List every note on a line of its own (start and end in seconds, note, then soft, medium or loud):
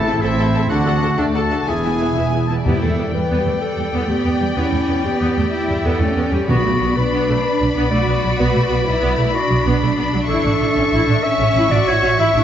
0.00 0.17 A1 soft
0.00 0.17 A2 medium
0.00 0.20 A2 medium
0.00 0.70 C4 soft
0.00 0.22 E4 medium
0.00 0.68 E4 soft
0.00 0.23 A4 medium
0.00 0.24 A4 medium
0.00 0.22 A5 medium
0.07 0.14 C4 soft
0.07 0.13 A4 soft
0.07 0.13 E5 soft
0.07 0.13 A5 soft
0.21 0.65 A1 soft
0.21 0.64 A2 soft
0.21 0.69 C4 medium
0.21 0.29 C4 soft
0.21 0.69 E4 soft
0.21 0.74 E4 medium
0.21 0.29 A4 soft
0.21 0.70 E5 soft
0.21 0.30 E5 soft
0.21 0.30 A5 soft
0.38 0.45 C4 soft
0.38 0.45 A4 soft
0.38 0.45 E5 soft
0.38 0.45 A5 soft
0.55 0.61 C4 soft
0.55 0.62 A4 soft
0.55 0.62 E5 soft
0.55 0.61 A5 soft
0.69 1.13 D2 soft
0.69 1.65 A3 soft
0.69 1.65 D4 soft
0.69 1.04 D4 soft
0.69 0.77 D4 soft
0.69 1.17 F#4 medium
0.69 1.21 F#4 medium
0.69 0.77 A4 soft
0.69 0.76 F#5 soft
0.69 1.18 F#5 medium
0.69 0.77 A5 soft
0.86 0.93 D4 soft
0.86 0.93 A4 soft
0.86 0.93 F#5 soft
0.86 0.93 A5 soft
1.02 1.09 D4 soft
1.02 1.09 A4 soft
1.02 1.08 F#5 soft
1.02 1.09 A5 soft
1.18 1.62 D2 soft
1.18 1.34 A3 soft
1.18 1.24 D4 soft
1.18 1.26 D4 soft
1.18 1.34 D4 medium
1.18 1.24 A4 soft
1.18 1.35 D5 soft
1.18 1.24 F#5 soft
1.18 1.24 A5 soft
1.34 1.41 D4 soft
1.34 1.66 F#4 soft
1.34 1.67 A4 medium
1.34 1.41 A4 soft
1.34 1.67 A4 soft
1.34 1.42 F#5 soft
1.34 1.42 A5 soft
1.34 1.68 A5 soft
1.51 1.57 D4 soft
1.51 1.57 A4 soft
1.51 1.58 F#5 soft
1.51 1.58 A5 soft
1.67 2.11 E1 soft
1.67 2.11 E2 soft
1.67 2.49 B3 soft
1.67 1.75 B3 soft
1.67 2.49 E4 soft
1.67 2.48 E4 soft
1.67 1.74 E4 soft
1.67 2.48 G#4 soft
1.67 1.74 E5 soft
1.67 1.73 G#5 soft
1.67 2.50 G#5 soft
1.84 1.91 B3 soft
1.84 1.91 E4 soft
1.84 1.91 E5 soft
1.84 1.90 G#5 soft
1.99 2.07 B3 soft
1.99 2.07 E4 soft
1.99 2.06 E5 soft
1.99 2.06 G#5 soft
2.15 2.60 E1 soft
2.15 2.60 E2 soft
2.15 2.23 B3 soft
2.15 2.23 E4 soft
2.15 2.31 E5 soft
2.30 2.40 B3 soft
2.30 2.40 E4 soft
2.30 2.37 G#5 soft
2.47 2.56 B3 soft
2.47 2.56 E4 soft
2.47 2.64 A5 soft
2.64 2.72 E2 soft
2.64 3.10 E2 medium
2.64 2.80 B3 soft
2.64 3.10 E4 soft
2.64 2.80 G4 medium
2.64 6.44 D5 soft
2.64 6.45 G5 soft
2.82 2.88 E2 soft
2.82 2.89 A3 soft
2.82 3.13 A4 medium
2.97 3.04 E2 soft
2.97 3.04 B3 soft
3.13 3.20 E2 soft
3.13 4.07 G3 soft
3.13 3.21 G3 soft
3.13 3.60 B4 medium
3.30 3.36 E2 soft
3.30 3.45 B3 soft
3.45 3.52 E2 soft
3.45 3.52 A3 soft
3.61 4.11 A4 medium
3.77 3.84 E2 soft
3.77 3.84 G3 soft
3.93 3.99 E2 soft
3.93 4.08 B3 soft
4.08 4.16 E2 soft
4.08 4.14 A3 soft
4.08 4.56 B3 soft
4.08 4.57 G4 medium
4.25 4.31 E2 soft
4.25 4.31 B3 soft
4.40 4.47 E2 soft
4.40 4.47 G3 soft
4.56 4.63 E2 medium
4.56 4.71 B3 soft
4.56 5.04 C#4 soft
4.56 5.04 E4 medium
4.72 4.79 E2 soft
4.72 4.79 A3 soft
4.89 4.95 E2 soft
4.89 4.95 B3 soft
5.04 5.11 E2 soft
5.04 5.11 G3 soft
5.04 5.53 B3 soft
5.04 5.87 G4 medium
5.21 5.27 E2 soft
5.21 5.36 B3 soft
5.37 5.43 E2 soft
5.37 5.44 A3 soft
5.52 6.00 E4 medium
5.68 5.75 E2 soft
5.68 5.76 G3 soft
5.84 5.91 E2 medium
5.84 6.00 B3 medium
5.84 6.34 A4 medium
6.00 6.06 E2 soft
6.00 6.08 A3 soft
6.00 6.48 C#4 medium
6.16 6.22 E2 soft
6.16 6.23 B3 soft
6.31 6.38 E2 soft
6.31 6.38 G3 soft
6.31 6.48 G4 medium
6.47 6.55 B1 medium
6.47 6.93 B2 medium
6.47 6.63 B3 medium
6.47 6.96 B3 soft
6.47 6.99 F#4 medium
6.47 10.24 D5 medium
6.47 10.25 B5 soft
6.64 6.71 B1 soft
6.64 6.71 A3 soft
6.80 6.87 B1 soft
6.80 6.87 B3 soft
6.96 7.03 B1 soft
6.96 7.02 F#3 soft
6.96 7.92 D4 medium
6.96 7.44 B4 medium
7.12 7.18 B1 medium
7.12 7.27 B3 medium
7.28 7.34 B1 soft
7.28 7.34 A3 soft
7.45 7.90 B4 medium
7.60 7.67 B1 soft
7.60 7.66 F#3 soft
7.75 7.82 B1 medium
7.75 7.90 B3 medium
7.91 7.98 B1 soft
7.91 7.98 A3 soft
7.91 8.84 F#4 medium
7.91 8.37 D5 medium
8.07 8.14 B1 soft
8.07 8.13 B3 soft
8.22 8.30 B1 soft
8.22 8.29 F#3 soft
8.38 8.46 B1 medium
8.38 8.53 B3 medium
8.38 8.85 B4 medium
8.54 8.62 B1 soft
8.54 8.60 A3 soft
8.69 8.77 B1 soft
8.69 8.76 B3 soft
8.84 8.93 B1 soft
8.84 8.91 F#3 soft
8.84 9.33 E4 medium
8.84 9.36 B4 medium
9.00 9.08 B1 medium
9.00 9.16 B3 medium
9.17 9.24 B1 medium
9.17 9.24 A3 soft
9.34 11.25 D4 medium
9.34 9.65 F#4 medium
9.49 9.57 B1 soft
9.49 9.56 F#3 soft
9.65 9.72 B1 medium
9.65 9.80 B3 medium
9.81 9.88 B1 soft
9.81 9.87 A3 soft
9.97 10.04 B1 soft
9.97 10.04 B3 medium
10.13 10.19 B1 soft
10.13 10.20 F#3 soft
10.28 10.35 A1 medium
10.28 10.43 E4 medium
10.28 11.25 A4 medium
10.28 12.44 E5 medium
10.28 12.44 C#6 medium
10.44 10.51 A1 medium
10.44 10.51 D4 soft
10.60 10.67 A1 soft
10.60 10.67 E4 medium
10.76 10.82 A1 soft
10.76 10.83 C#4 soft
10.92 10.98 A1 medium
10.92 11.08 E4 medium
11.08 11.14 A1 medium
11.08 11.14 D4 medium
11.23 11.70 C#4 medium
11.23 11.73 E5 medium
11.40 11.46 A1 soft
11.40 11.46 C#4 medium
11.55 11.62 A1 medium
11.55 11.71 E4 medium
11.71 11.78 A1 medium
11.71 11.79 D4 soft
11.71 12.19 F#4 medium
11.71 11.90 D5 medium
11.87 11.94 A1 soft
11.87 11.95 E4 medium
11.87 12.19 C#5 medium
12.03 12.10 A1 medium
12.03 12.10 C#4 medium
12.19 12.26 A1 medium
12.19 12.44 E4 medium
12.19 12.34 E4 medium
12.19 12.44 E5 medium
12.35 12.41 A1 soft
12.35 12.42 D4 soft